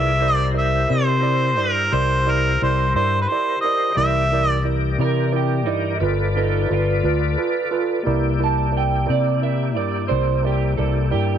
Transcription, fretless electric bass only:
Already playing: C2
0.90 C3
1.58 G2
1.92 C2
2.62 C2
2.94 G2
3.97 C2
4.98 C3
5.67 G2
6.01 G1
6.70 G1
7.03 D2
8.07 C2
9.09 C3
9.77 G2
10.11 C2
10.78 C2
11.13 G2

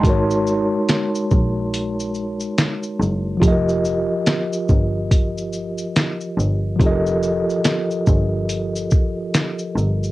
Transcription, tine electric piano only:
Already playing: A5 C6
0.00 G#3 D#4
0.04 F#4 A#4
0.09 C#5
3.37 F3 F4
3.42 G4 A4
3.48 A#4 D#5
6.76 F3 F4
6.81 G4 A4
6.86 D#5
6.90 A#4

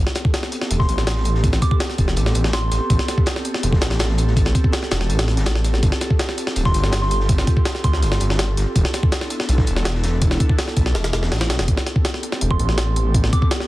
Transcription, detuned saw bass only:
0.71 E1
0.89 A1
1.99 E1
2.17 A1
2.35 A1
2.72 A1
2.90 A1
3.63 E1
3.82 A1
4.91 E1
5.10 A1
5.37 G1
5.46 A1
5.83 G1
6.56 D1
6.74 G1
7.84 D2
8.03 G1
8.21 G1
8.57 G1
8.76 E1
9.49 B1
9.67 E1
10.77 B1
10.95 E1
11.14 E1
11.32 A1
11.50 B1
11.59 E1
11.68 A1
12.42 E1
12.60 A1

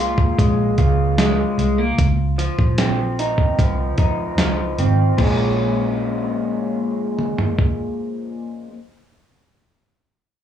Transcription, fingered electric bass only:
Already playing: C2
0.38 A#1
0.78 C#2
1.58 C2
1.98 C#2
2.59 A#1
3.59 C2
3.98 F2
4.38 C#2
4.78 G#1
5.19 A#1

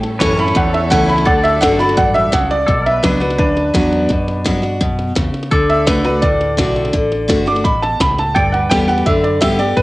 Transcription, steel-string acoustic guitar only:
Already playing: A2
0.20 E3 A3 C#4 E4
0.37 C#4 E4
0.55 E2
0.90 E3 A3 C#4 E4
1.25 D3
1.61 D3 A3 D4 F#4
1.79 D4 F#4
1.97 G2
2.32 C#3
2.68 B2
3.03 F#3 B3 D4 F#4
3.20 D4 F#4
3.38 F#2
3.74 F#3 B3 D4 F#4
4.09 B2
4.45 F#3 B3 D4 F#4
4.62 D4 F#4
4.81 B2
5.15 C#3
5.51 D3
5.87 D3 A3 D4 F#4
6.04 D4 F#4
6.22 A2
6.57 D3 A3 D4 F#4
6.93 D3
7.28 D3 A3 D4 F#4
7.46 D4 F#4
7.65 B2
8.00 A2
8.36 G2
8.70 D3 G3 B3 G4
8.88 B3 G4
9.06 D3
9.41 D3 G3 B3 G4
9.59 B3 G4
9.77 G2

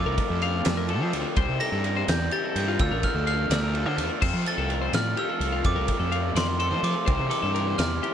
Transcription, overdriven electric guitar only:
Already playing: F3 A3 C4 F4 A4
0.88 F3 A3 C4 F4 A4
1.36 C3 E3 G3 C4 E4 A#4
2.32 C3 E3 G3 C4 E4 A#4
2.79 D3 A3 D4 F4 A4
3.74 D3 A3 D4 F4 A4
4.21 F3 A3 C4 F4 A4
5.16 F3 A3 C4 F4 A4
5.63 F3 A3 C4 F4 A4
6.58 F3 A3 C4 F4 A4
7.06 C3 E3 G3 C4 E4 A#4
8.02 C3 E3 G3 C4 E4 A#4

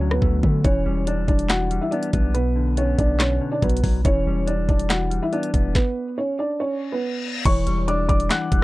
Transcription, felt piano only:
0.11 B3 B4
0.65 C#4 C#5
1.07 D4 D5
1.28 D4 D5
1.50 F#4 F#5
1.81 E4 E5
1.91 D4 D5
2.34 B3 B4
2.78 C#4 C#5
2.98 D4 D5
3.20 C#4 C#5
3.52 D4 D5
3.63 B3 B4
4.06 C#4 C#5
4.47 D4 D5
4.69 D4 D5
4.90 F#4 F#5
5.22 E4 E5
5.33 D4 D5
5.75 B3 B4
6.18 C#4 C#5
6.39 D4 D5
6.60 C#4 C#5
6.92 B3 B4
7.46 C#5 C#6
7.88 D5 D6
8.09 D5 D6
8.31 F#5 F#6

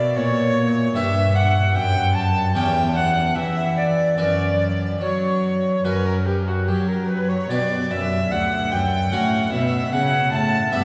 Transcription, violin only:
Already playing: D5
0.17 C#5
0.96 E5
1.36 F#5
1.75 G5
2.15 A5
2.56 G5
2.96 F#5
3.36 E5
3.77 D5
4.18 D5
5.01 C#5
5.85 B4
6.06 A#4
6.28 G4
6.47 F#4
6.68 G4
6.89 A#4
7.09 B4
7.30 C#5
7.51 D5
7.91 E5
8.32 F#5
8.72 G5
9.12 F#5
9.52 E5
9.92 F#5
10.32 A5
10.72 E5

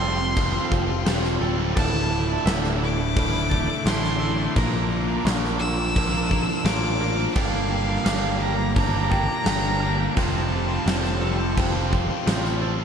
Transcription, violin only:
Already playing: C6
1.76 A5
2.84 D6
3.86 C6
4.57 A#5
5.59 E6
6.65 D6
7.35 F5
8.41 A#5
8.76 A#5
10.18 A5

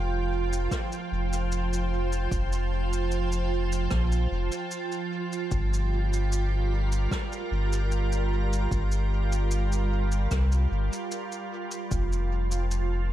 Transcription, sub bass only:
Already playing: F1
1.12 F1
2.31 F1
3.92 A#1
4.31 F1
5.51 G1
7.51 G1
8.71 G1
10.31 C2
10.71 G1
11.91 F1

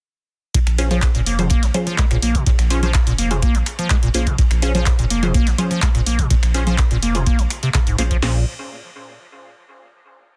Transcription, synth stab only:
0.78 C#4 F4 G#4 C5
0.91 C#4 F4 G#4 C5
1.39 C#4 F4 G#4 C5
1.74 C#4 F4 G#4 C5
2.70 C#4 F4 G#4 C5
2.83 C#4 F4 G#4 C5
3.31 C#4 F4 G#4 C5
4.14 C#4 F4 G#4 C5
4.62 C#4 F4 G#4 C5
4.75 C#4 F4 G#4 C5
5.23 C#4 F4 G#4 C5
5.58 C#4 F4 G#4 C5
6.54 C#4 F4 G#4 C5
6.67 C#4 F4 G#4 C5
7.15 C#4 F4 G#4 C5
7.98 C#4 F4 G#4 C5
8.22 C#4 F4 G#4 C5

